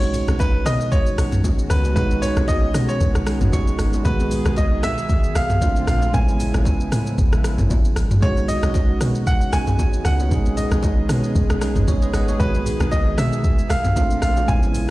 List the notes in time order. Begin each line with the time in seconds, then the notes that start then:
Already playing: B1 D#3 G#3 B3 C#4 D#4 F#4 C#5
0.02 low bongo, shaker
0.14 open hi-hat, low conga, shaker
0.28 B1, cross-stick, low bongo, shaker
0.39 B4, kick, high bongo, shaker
0.66 B2 D#5, cross-stick, open hi-hat, low bongo, shaker
0.81 shaker
0.92 C#5, kick, low conga, shaker
1.06 shaker
1.18 B1, cross-stick, open hi-hat, shaker
1.32 mid tom, low bongo, shaker
1.44 kick, high bongo, shaker
1.59 shaker
1.70 C#2 B4, cross-stick, open hi-hat, shaker
1.85 high bongo, shaker
1.94 B1 G#3 C#4 D#4 B4, kick, low conga, shaker
1.99 F#4
2.11 low bongo, shaker
2.22 C#5, open hi-hat, low conga, shaker
2.37 B1, cross-stick, low bongo, shaker
2.48 D#5, kick, high bongo, shaker
2.74 B2, cross-stick, open hi-hat, low bongo, shaker
2.89 C#5, shaker
3.00 B1, kick, low conga, shaker
3.15 B1, cross-stick, shaker
3.26 G#3 C#4 D#4 F#4, cross-stick, open hi-hat, shaker
3.35 G#4
3.41 G#1, mid tom, low bongo, shaker
3.53 B1 C#6, kick, high bongo, shaker
3.67 shaker
3.79 G#1, cross-stick, open hi-hat, shaker
3.93 high bongo, shaker
4.03 B1 D#3 G#3 B3 G#4 B4, kick, low conga, shaker
4.08 F#4
4.20 low bongo, shaker
4.31 open hi-hat, low conga, shaker
4.45 B1, cross-stick, low bongo, shaker
4.56 D#5, kick, high bongo, shaker
4.83 B2 E5, cross-stick, open hi-hat, low bongo, shaker
4.98 shaker
5.09 kick, low conga, shaker
5.24 shaker
5.35 B1 F5, cross-stick, open hi-hat, shaker
5.50 mid tom, low bongo, shaker
5.61 A#2 D3 F3 A3 C4 D4 F4, kick, high bongo, shaker
5.76 shaker
5.87 A#1 F5, cross-stick, open hi-hat, shaker
6.02 high bongo, shaker
6.12 A1 C#3 G#3 B3 C4 E4 G#5, kick, low conga, shaker
6.17 E4
6.21 C#4
6.28 low bongo, shaker
6.40 open hi-hat, low conga, shaker
6.54 A1, cross-stick, low bongo, shaker
6.65 kick, high bongo, shaker
6.81 shaker
6.92 A2, cross-stick, open hi-hat, low bongo, shaker
7.07 shaker
7.18 A1, kick, low conga, shaker
7.33 A1, cross-stick, shaker
7.44 cross-stick, open hi-hat, shaker
7.58 G#1, mid tom, low bongo, shaker
7.70 A1, kick, high bongo, shaker
7.85 shaker
7.96 G#1, cross-stick, open hi-hat, shaker
8.11 mid tom, high bongo, shaker
8.21 B1 D#3 G#3 B3 C#4 D#4 F#4 C#5, kick, low conga, shaker
8.25 F#4
8.37 low bongo, shaker
8.48 D#5, open hi-hat, low conga, shaker
8.63 B1, cross-stick, low bongo, shaker
8.74 kick, high bongo, shaker
9.01 B2, cross-stick, open hi-hat, low bongo, shaker
9.15 shaker
9.27 F#5, kick, low conga, shaker
9.41 shaker
9.53 B1 G#5, cross-stick, open hi-hat, shaker
9.67 mid tom, low bongo, shaker
9.79 kick, high bongo, shaker
9.93 shaker
10.05 C#2 F#5, cross-stick, open hi-hat, shaker
10.19 high bongo, shaker
10.29 B1 G#3 C#4 D#4 G#4, kick, low conga, shaker
10.34 G#4
10.46 low bongo, shaker
10.57 D#5, open hi-hat, low conga, shaker
10.71 B1, cross-stick, low bongo, shaker
10.83 kick, high bongo, shaker
11.09 B2, cross-stick, open hi-hat, low bongo, shaker
11.24 shaker
11.35 B1, kick, low conga, shaker
11.50 B1, cross-stick, shaker
11.61 G#3 C#4 D#4 G#4, cross-stick, open hi-hat, shaker
11.76 G#1, mid tom, low bongo, shaker
11.88 B1 C#5, kick, high bongo, shaker
12.02 B4 D#5, shaker
12.14 G#1 D#5 F#5, cross-stick, open hi-hat, shaker
12.28 C#5, high bongo, shaker
12.38 B1 D#3 G#3 B3 B4, kick, low conga, shaker
12.43 F#4
12.55 low bongo, shaker
12.66 open hi-hat, low conga, shaker
12.80 B1, cross-stick, low bongo, shaker
12.91 D#5, kick, high bongo, shaker
13.18 B2 E5, cross-stick, open hi-hat, low bongo, shaker
13.33 shaker
13.44 kick, low conga, shaker
13.59 shaker
13.70 B1 F5, cross-stick, open hi-hat, shaker
13.84 mid tom, low bongo, shaker
13.96 A#2 D3 F3 A3 C4 D4 F4, kick, high bongo, shaker
14.11 shaker
14.22 A#1 F5, cross-stick, open hi-hat, shaker
14.37 high bongo, shaker
14.46 A1 C#3 G#3 B3 C#4 E4 G#5, kick, low conga, shaker
14.51 D#4
14.57 E4
14.63 low bongo, shaker
14.74 open hi-hat, low conga, shaker